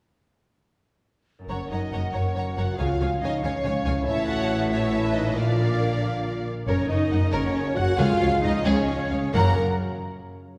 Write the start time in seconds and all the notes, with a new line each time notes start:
1.39 F#2 C#4
1.43 F#4 A#4
1.48 F#1 F#2 F#3 A#3 C#4 A#4 C#5 F#5 A#5
1.69 F#1 F#2 D#4 C#5 D#5 F#5 A#5
1.92 F#1 F#2 C#5 F#5 A#5
2.12 F#1 F#2 C#4 C#5 F#5 A#5
2.36 F#1 F#2 C#5 F#5 A#5
2.56 F#1 F#2 F#4 C#5 F#5 A#5
2.61 C#3
2.66 C#4
2.70 F4
2.75 F3 C#4 G#4 C#5 F5 G#5
2.79 C#2 C#3 F4 C#5
3.01 C#2 C#3 C#5 F5 G#5
3.21 C#2 C#3 D#4 C#5 D#5 F5 G#5
3.42 C#2 C#3 C#4 C#5 F5 G#5
3.64 C#2 C#3 C#5 F5 G#5
3.85 C#2 A2 C#3 C#5 F5 G#5
3.93 C#4
3.99 E4 A4
4.05 A1 A2 E3 E4 C#5 E5 A5
4.28 F#4 F#5
4.70 E4 C#5 E5 A5
5.05 B4
5.13 D#4 D#5
5.18 A#2
5.23 A#3
5.28 D4
5.32 F4 D5 F5
5.36 A#1 A#2 D3 D4 A#4 D5 F5
6.67 F#1 F#2 C#3 A#3 C#4 A#4 C#5
6.79 C#3
6.88 F#1 F#2 A#3 D#4 C#5 D#5
7.02 C#4
7.11 F#1 F#2 F#4 F#5
7.23 A#4
7.31 F#1 F#2 C#4 A#4 C#5
7.45 F#5
7.55 C#5
7.67 A#4
7.75 F#1 F#2 F#4 F#5
7.89 A#3
7.97 C#2 C#3 F3 G#3 F4 G#4 F5
8.10 G#3
8.21 C#2 C#4 C#5
8.32 F4
8.41 C#2 D#4 G#4 D#5 F5
8.55 C#5
8.64 C#2 C#4 G#4 C#5 F5
8.77 G#5
8.89 F5
9.01 C#5
9.11 C#2 G#4 F5
9.25 C#4
9.34 F#1 F#2 C#3 F#3 A#3 C#4 F#4 A#4 C#5 F#5 A#5